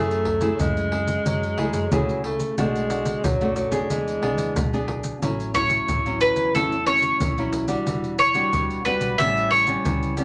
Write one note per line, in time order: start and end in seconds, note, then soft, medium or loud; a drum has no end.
0.00 0.50 F#2 medium
0.00 0.56 F#3 medium
0.00 0.25 A3 medium
0.00 0.61 A3 medium
0.00 0.25 E4 soft
0.00 0.25 G#4 medium
0.11 pandeiro soft
0.11 maracas soft
0.25 pandeiro medium
0.25 surdo medium
0.41 0.87 A3 medium
0.41 0.87 E4 medium
0.41 0.87 G#4 medium
0.41 pandeiro medium
0.41 maracas medium
0.59 1.16 F#2 medium
0.59 1.22 C#3 medium
0.59 1.93 G#3 medium
0.59 pandeiro medium
0.59 maracas medium
0.59 surdo medium
0.77 pandeiro soft
0.77 maracas soft
0.92 1.53 E4 soft
0.92 1.53 G#4 medium
0.92 pandeiro medium
1.08 pandeiro medium
1.08 maracas medium
1.25 1.54 F#2 medium
1.25 1.88 F#3 soft
1.25 pandeiro medium
1.25 maracas medium
1.25 surdo medium
1.43 pandeiro soft
1.43 maracas soft
1.58 1.73 C#2 medium
1.58 1.78 A3 medium
1.58 1.78 E4 medium
1.58 1.78 G#4 medium
1.58 pandeiro medium
1.73 1.92 F#2 medium
1.73 pandeiro medium
1.73 maracas medium
1.92 2.48 C#2 medium
1.92 2.55 C#3 medium
1.92 2.23 F#3 medium
1.92 2.34 A3 medium
1.92 2.35 E4 medium
1.92 2.35 G#4 medium
1.92 pandeiro medium
1.92 maracas medium
1.92 surdo loud
2.09 pandeiro soft
2.09 maracas soft
2.23 2.55 A3 medium
2.23 pandeiro medium
2.40 pandeiro medium
2.40 maracas medium
2.58 3.14 B1 medium
2.58 3.21 B2 medium
2.58 3.25 G#3 medium
2.58 2.86 A3 medium
2.58 2.86 D4 medium
2.58 2.86 F#4 medium
2.58 pandeiro medium
2.58 maracas medium
2.58 surdo medium
2.75 pandeiro soft
2.75 maracas soft
2.90 3.21 D4 soft
2.90 3.22 F#4 medium
2.90 pandeiro medium
2.90 maracas medium
3.05 pandeiro medium
3.05 maracas medium
3.24 3.80 B1 medium
3.24 3.87 F#2 soft
3.24 3.55 F#3 medium
3.24 pandeiro medium
3.24 maracas medium
3.24 surdo medium
3.41 3.69 A3 medium
3.41 3.69 D4 medium
3.41 3.69 F#4 medium
3.41 pandeiro soft
3.41 maracas soft
3.56 3.87 F#3 medium
3.56 pandeiro medium
3.56 maracas medium
3.71 4.17 B3 medium
3.71 4.17 D4 medium
3.71 4.17 G#4 medium
3.71 pandeiro medium
3.71 maracas medium
3.90 4.18 E2 medium
3.90 4.53 E3 soft
3.90 4.85 G#3 medium
3.90 pandeiro medium
3.90 maracas medium
3.90 surdo medium
4.08 pandeiro soft
4.08 maracas soft
4.22 4.37 B1 medium
4.22 4.54 B3 medium
4.22 4.54 D4 medium
4.22 4.54 G#4 medium
4.22 pandeiro medium
4.37 4.56 E2 medium
4.37 pandeiro medium
4.37 maracas medium
4.56 5.12 B1 medium
4.56 5.19 B2 soft
4.56 pandeiro medium
4.56 maracas medium
4.56 surdo loud
4.73 5.17 B3 medium
4.73 5.18 D4 medium
4.73 5.18 G#4 medium
4.73 pandeiro soft
4.73 maracas soft
4.88 pandeiro medium
5.04 pandeiro medium
5.04 maracas medium
5.22 5.78 A1 medium
5.22 5.85 A2 soft
5.22 5.50 F#3 medium
5.22 5.50 C#4 medium
5.22 5.51 E4 medium
5.22 pandeiro medium
5.22 maracas medium
5.22 surdo medium
5.40 pandeiro soft
5.40 maracas soft
5.54 5.99 F#3 soft
5.54 5.99 C#4 medium
5.54 6.00 E4 medium
5.54 6.17 C#5 medium
5.54 pandeiro medium
5.54 maracas medium
5.54 surdo medium
5.70 pandeiro medium
5.70 maracas medium
5.88 6.31 A1 medium
5.88 6.51 E3 soft
5.88 pandeiro medium
5.88 maracas medium
5.88 surdo medium
6.06 6.50 F#3 medium
6.06 6.50 C#4 medium
6.06 6.50 E4 medium
6.06 pandeiro soft
6.06 maracas soft
6.21 6.54 B4 medium
6.21 pandeiro medium
6.21 maracas medium
6.36 6.51 E2 medium
6.36 pandeiro medium
6.36 maracas medium
6.54 7.11 E2 medium
6.54 7.17 A2 medium
6.54 6.74 F#3 soft
6.54 6.74 C#4 medium
6.54 6.74 E4 medium
6.54 6.85 A4 medium
6.54 pandeiro medium
6.54 maracas medium
6.54 surdo medium
6.72 pandeiro soft
6.72 maracas soft
6.86 7.31 F#3 soft
6.86 7.31 C#4 medium
6.86 7.32 E4 medium
6.86 7.49 C#5 medium
6.86 pandeiro medium
6.86 maracas medium
7.02 pandeiro medium
7.02 maracas medium
7.20 7.77 B1 medium
7.20 7.83 E3 medium
7.20 pandeiro medium
7.20 maracas medium
7.20 surdo loud
7.38 7.65 F#3 medium
7.38 7.66 C#4 medium
7.38 7.66 E4 medium
7.38 pandeiro soft
7.38 maracas soft
7.53 pandeiro medium
7.53 maracas medium
7.68 8.14 G3 medium
7.68 8.14 D4 medium
7.68 8.14 F#4 medium
7.68 pandeiro medium
7.68 maracas medium
7.87 8.43 E1 medium
7.87 8.50 E3 soft
7.87 pandeiro medium
7.87 maracas medium
7.87 surdo soft
8.04 pandeiro soft
8.04 maracas soft
8.19 8.85 C#5 medium
8.19 pandeiro medium
8.19 maracas medium
8.34 8.80 G3 medium
8.34 8.80 D4 medium
8.34 8.80 F#4 medium
8.34 pandeiro medium
8.34 maracas medium
8.53 8.95 E1 medium
8.53 9.16 B2 soft
8.53 pandeiro medium
8.53 maracas medium
8.53 surdo medium
8.70 pandeiro soft
8.70 maracas soft
8.85 9.14 G3 soft
8.85 9.14 D4 medium
8.85 9.14 F#4 medium
8.85 9.16 B4 medium
8.85 pandeiro medium
8.85 maracas medium
9.00 9.15 B1 medium
9.00 pandeiro medium
9.00 maracas medium
9.18 9.75 A1 medium
9.18 9.82 A2 soft
9.18 9.64 G3 soft
9.18 9.64 B3 soft
9.18 9.64 C#4 medium
9.18 9.49 E5 medium
9.18 pandeiro medium
9.18 maracas medium
9.18 surdo medium
9.37 pandeiro soft
9.37 maracas soft
9.51 10.13 C#5 medium
9.51 pandeiro medium
9.67 10.12 G3 medium
9.67 10.12 B3 medium
9.67 10.12 C#4 medium
9.67 pandeiro medium
9.67 maracas medium
9.85 10.24 C#2 medium
9.85 10.24 E3 medium
9.85 pandeiro medium
9.85 maracas medium
9.85 surdo loud
10.03 pandeiro soft
10.03 maracas soft
10.17 10.24 G3 medium
10.17 10.24 B3 medium
10.17 10.24 C#4 medium
10.17 pandeiro medium
10.17 maracas medium